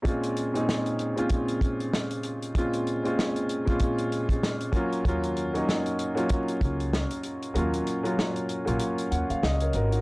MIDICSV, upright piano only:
0, 0, Header, 1, 2, 480
1, 0, Start_track
1, 0, Key_signature, -5, "minor"
1, 0, Tempo, 625000
1, 41, Time_signature, 4, 2, 24, 8
1, 7689, End_track
2, 0, Start_track
2, 0, Title_t, "Upright piano"
2, 0, Program_c, 0, 0
2, 15, Note_on_c, 0, 46, 79
2, 20, Note_on_c, 0, 56, 76
2, 26, Note_on_c, 0, 60, 73
2, 32, Note_on_c, 0, 61, 78
2, 38, Note_on_c, 0, 65, 88
2, 185, Control_c, 0, 64, 127
2, 249, Note_off_c, 0, 46, 0
2, 252, Note_off_c, 0, 56, 0
2, 255, Note_off_c, 0, 60, 0
2, 258, Note_off_c, 0, 61, 0
2, 261, Note_off_c, 0, 65, 0
2, 410, Note_on_c, 0, 46, 84
2, 416, Note_on_c, 0, 56, 76
2, 422, Note_on_c, 0, 60, 79
2, 428, Note_on_c, 0, 61, 75
2, 433, Note_on_c, 0, 63, 90
2, 697, Note_off_c, 0, 46, 0
2, 700, Note_off_c, 0, 56, 0
2, 703, Note_off_c, 0, 60, 0
2, 706, Note_off_c, 0, 61, 0
2, 709, Note_off_c, 0, 63, 0
2, 889, Note_on_c, 0, 46, 77
2, 895, Note_on_c, 0, 56, 73
2, 901, Note_on_c, 0, 60, 75
2, 906, Note_on_c, 0, 61, 72
2, 912, Note_on_c, 0, 65, 95
2, 1458, Note_off_c, 0, 46, 0
2, 1461, Note_off_c, 0, 56, 0
2, 1464, Note_off_c, 0, 60, 0
2, 1466, Note_off_c, 0, 61, 0
2, 1469, Note_off_c, 0, 65, 0
2, 1956, Note_on_c, 0, 46, 76
2, 1962, Note_on_c, 0, 56, 74
2, 1967, Note_on_c, 0, 60, 78
2, 1973, Note_on_c, 0, 61, 73
2, 1979, Note_on_c, 0, 65, 100
2, 2180, Note_off_c, 0, 46, 0
2, 2183, Note_off_c, 0, 56, 0
2, 2185, Note_off_c, 0, 60, 0
2, 2188, Note_off_c, 0, 61, 0
2, 2191, Note_off_c, 0, 65, 0
2, 2330, Note_on_c, 0, 46, 80
2, 2337, Note_on_c, 0, 56, 74
2, 2343, Note_on_c, 0, 60, 78
2, 2348, Note_on_c, 0, 61, 81
2, 2354, Note_on_c, 0, 65, 95
2, 2617, Note_off_c, 0, 46, 0
2, 2620, Note_off_c, 0, 56, 0
2, 2623, Note_off_c, 0, 60, 0
2, 2626, Note_off_c, 0, 61, 0
2, 2629, Note_off_c, 0, 65, 0
2, 2806, Note_on_c, 0, 46, 88
2, 2812, Note_on_c, 0, 56, 74
2, 2817, Note_on_c, 0, 60, 72
2, 2822, Note_on_c, 0, 61, 77
2, 2828, Note_on_c, 0, 65, 101
2, 3376, Note_off_c, 0, 46, 0
2, 3379, Note_off_c, 0, 56, 0
2, 3382, Note_off_c, 0, 60, 0
2, 3385, Note_off_c, 0, 61, 0
2, 3387, Note_off_c, 0, 65, 0
2, 3624, Note_on_c, 0, 54, 89
2, 3632, Note_on_c, 0, 58, 81
2, 3639, Note_on_c, 0, 61, 83
2, 3647, Note_on_c, 0, 65, 101
2, 3651, Control_c, 0, 64, 0
2, 3800, Control_c, 0, 64, 127
2, 3832, Note_off_c, 0, 54, 0
2, 3836, Note_off_c, 0, 58, 0
2, 3840, Note_off_c, 0, 61, 0
2, 3844, Note_off_c, 0, 65, 0
2, 3874, Note_on_c, 0, 54, 90
2, 3881, Note_on_c, 0, 58, 76
2, 3889, Note_on_c, 0, 61, 73
2, 3897, Note_on_c, 0, 65, 101
2, 4099, Note_off_c, 0, 54, 0
2, 4102, Note_off_c, 0, 58, 0
2, 4106, Note_off_c, 0, 61, 0
2, 4110, Note_off_c, 0, 65, 0
2, 4249, Note_on_c, 0, 54, 81
2, 4257, Note_on_c, 0, 58, 80
2, 4264, Note_on_c, 0, 61, 75
2, 4272, Note_on_c, 0, 63, 86
2, 4536, Note_off_c, 0, 54, 0
2, 4540, Note_off_c, 0, 58, 0
2, 4544, Note_off_c, 0, 61, 0
2, 4548, Note_off_c, 0, 63, 0
2, 4721, Note_on_c, 0, 54, 83
2, 4729, Note_on_c, 0, 58, 76
2, 4736, Note_on_c, 0, 61, 81
2, 4744, Note_on_c, 0, 65, 94
2, 5294, Note_off_c, 0, 54, 0
2, 5298, Note_off_c, 0, 58, 0
2, 5302, Note_off_c, 0, 61, 0
2, 5306, Note_off_c, 0, 65, 0
2, 5790, Note_on_c, 0, 54, 79
2, 5798, Note_on_c, 0, 58, 69
2, 5805, Note_on_c, 0, 61, 75
2, 5812, Note_on_c, 0, 65, 88
2, 6017, Note_off_c, 0, 54, 0
2, 6021, Note_off_c, 0, 58, 0
2, 6024, Note_off_c, 0, 61, 0
2, 6028, Note_off_c, 0, 65, 0
2, 6169, Note_on_c, 0, 54, 87
2, 6176, Note_on_c, 0, 58, 74
2, 6184, Note_on_c, 0, 61, 74
2, 6192, Note_on_c, 0, 65, 87
2, 6456, Note_off_c, 0, 54, 0
2, 6460, Note_off_c, 0, 58, 0
2, 6464, Note_off_c, 0, 61, 0
2, 6468, Note_off_c, 0, 65, 0
2, 6642, Note_on_c, 0, 54, 80
2, 6649, Note_on_c, 0, 58, 82
2, 6657, Note_on_c, 0, 61, 76
2, 6665, Note_on_c, 0, 65, 88
2, 6997, Note_on_c, 0, 78, 69
2, 7129, Note_off_c, 0, 78, 0
2, 7141, Note_on_c, 0, 77, 73
2, 7214, Note_off_c, 0, 54, 0
2, 7218, Note_off_c, 0, 58, 0
2, 7222, Note_off_c, 0, 61, 0
2, 7226, Note_off_c, 0, 65, 0
2, 7233, Note_off_c, 0, 77, 0
2, 7246, Note_on_c, 0, 75, 75
2, 7374, Note_off_c, 0, 75, 0
2, 7383, Note_on_c, 0, 73, 68
2, 7389, Note_on_c, 0, 70, 54
2, 7477, Note_off_c, 0, 70, 0
2, 7488, Note_on_c, 0, 70, 75
2, 7494, Note_on_c, 0, 66, 59
2, 7600, Note_off_c, 0, 66, 0
2, 7612, Note_on_c, 0, 66, 65
2, 7616, Note_on_c, 0, 63, 59
2, 7618, Note_off_c, 0, 70, 0
2, 7689, Note_off_c, 0, 63, 0
2, 7689, Note_off_c, 0, 66, 0
2, 7689, Note_off_c, 0, 73, 0
2, 7689, End_track
0, 0, End_of_file